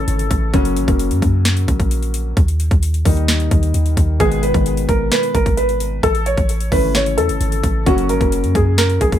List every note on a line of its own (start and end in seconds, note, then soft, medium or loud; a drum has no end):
0.00 0.53 C#3 medium
0.00 0.56 E3 medium
0.00 0.56 A3 medium
0.00 0.54 C#4 medium
0.00 0.49 A4 medium
0.00 downlifter medium
0.08 0.30 G#1 loud
0.08 closed hi-hat medium
0.19 closed hi-hat medium
0.31 0.53 A1 loud
0.31 kick medium
0.31 closed hi-hat loud
0.53 0.78 F#1 loud
0.53 0.74 C#3 medium
0.53 0.75 F#3 medium
0.53 0.75 A#3 medium
0.53 0.75 C#4 loud
0.53 kick loud
0.53 closed hi-hat medium
0.65 closed hi-hat medium
0.77 0.87 G#1 loud
0.77 closed hi-hat medium
0.87 1.12 F#1 loud
0.87 1.44 C#3 medium
0.87 1.44 F#3 medium
0.87 1.45 A#3 medium
0.87 1.45 C#4 medium
0.87 kick loud
0.87 closed hi-hat medium
0.99 closed hi-hat medium
1.11 1.22 F#2 loud
1.11 closed hi-hat medium
1.22 1.66 F#2 loud
1.22 kick medium
1.22 closed hi-hat medium
1.45 snare loud
1.45 closed hi-hat medium
1.57 closed hi-hat medium
1.68 2.34 A#1 loud
1.68 kick medium
1.68 closed hi-hat medium
1.80 kick medium
1.80 closed hi-hat medium
1.91 closed hi-hat medium
2.03 closed hi-hat medium
2.14 closed hi-hat medium
2.37 2.70 D#2 loud
2.37 kick loud
2.37 closed hi-hat medium
2.48 closed hi-hat medium
2.60 closed hi-hat medium
2.71 3.04 D#2 loud
2.71 kick loud
2.71 closed hi-hat medium
2.83 closed hi-hat medium
2.94 closed hi-hat medium
3.05 3.49 D#2 loud
3.05 3.62 D#3 medium
3.05 3.62 G3 medium
3.05 3.62 A#3 medium
3.05 3.62 D#4 medium
3.05 kick medium
3.05 closed hi-hat medium
3.05 open hi-hat medium
3.17 closed hi-hat soft
3.28 snare loud
3.28 closed hi-hat medium
3.40 closed hi-hat medium
3.51 3.73 D#2 loud
3.51 kick loud
3.51 closed hi-hat medium
3.63 closed hi-hat medium
3.74 3.96 D#2 loud
3.74 closed hi-hat medium
3.86 closed hi-hat soft
3.97 4.19 D#2 loud
3.97 kick medium
3.97 closed hi-hat loud
4.19 4.53 G#1 loud
4.19 4.41 B2 medium
4.19 4.41 D#3 medium
4.19 4.41 G#3 medium
4.19 4.42 B3 loud
4.19 4.41 G#4 loud
4.19 kick loud
4.19 closed hi-hat medium
4.32 closed hi-hat medium
4.43 4.86 B4 medium
4.43 closed hi-hat medium
4.54 4.87 G#1 loud
4.54 5.11 B2 medium
4.54 5.11 D#3 medium
4.54 5.11 G#3 medium
4.54 5.11 B3 medium
4.54 kick loud
4.54 closed hi-hat medium
4.66 closed hi-hat medium
4.77 closed hi-hat medium
4.89 5.11 G#1 loud
4.89 5.09 A#4 medium
4.89 kick medium
4.89 closed hi-hat medium
5.12 5.32 B4 medium
5.12 snare loud
5.12 closed hi-hat medium
5.23 closed hi-hat soft
5.35 6.01 G#1 loud
5.35 5.55 A#4 medium
5.35 kick medium
5.35 closed hi-hat medium
5.46 kick medium
5.46 closed hi-hat medium
5.57 6.00 B4 medium
5.57 closed hi-hat medium
5.69 closed hi-hat soft
5.80 closed hi-hat medium
6.03 6.36 A1 loud
6.03 6.24 A4 medium
6.03 kick loud
6.03 closed hi-hat medium
6.15 closed hi-hat medium
6.26 6.69 C#5 medium
6.26 closed hi-hat medium
6.38 6.71 A1 loud
6.38 kick loud
6.38 closed hi-hat medium
6.49 closed hi-hat medium
6.60 closed hi-hat medium
6.71 7.19 G#1 loud
6.71 7.28 C#3 medium
6.71 7.28 E3 medium
6.71 7.29 A3 medium
6.71 7.29 C#4 medium
6.71 6.93 B4 medium
6.71 kick medium
6.71 open hi-hat medium
6.95 7.16 C#5 medium
6.95 snare loud
6.95 closed hi-hat medium
7.06 closed hi-hat medium
7.17 7.31 E2 medium
7.17 7.82 A4 medium
7.17 closed hi-hat medium
7.29 7.40 G#1 loud
7.29 closed hi-hat medium
7.41 7.63 G#1 loud
7.41 closed hi-hat medium
7.52 closed hi-hat medium
7.63 7.86 A1 loud
7.63 kick medium
7.63 closed hi-hat medium
7.86 8.11 F#1 loud
7.86 8.07 C#3 medium
7.86 8.08 F#3 medium
7.86 8.08 A#3 medium
7.86 8.08 C#4 loud
7.86 8.07 F#4 loud
7.86 kick loud
7.86 closed hi-hat medium
7.98 closed hi-hat medium
8.09 8.20 G#1 loud
8.09 8.52 A#4 medium
8.09 closed hi-hat medium
8.20 8.45 F#1 loud
8.20 8.77 C#3 medium
8.20 8.77 F#3 medium
8.20 8.77 A#3 medium
8.20 8.78 C#4 medium
8.20 kick loud
8.20 closed hi-hat medium
8.32 closed hi-hat medium
8.44 8.55 F#2 loud
8.44 closed hi-hat medium
8.55 8.99 F#2 loud
8.55 8.76 G#4 medium
8.55 kick medium
8.55 closed hi-hat medium
8.78 8.99 A#4 medium
8.78 snare loud
8.78 closed hi-hat medium
8.90 closed hi-hat medium
9.01 9.19 A#1 loud
9.01 9.19 G#4 medium
9.01 kick medium
9.01 closed hi-hat medium
9.12 kick medium
9.12 closed hi-hat medium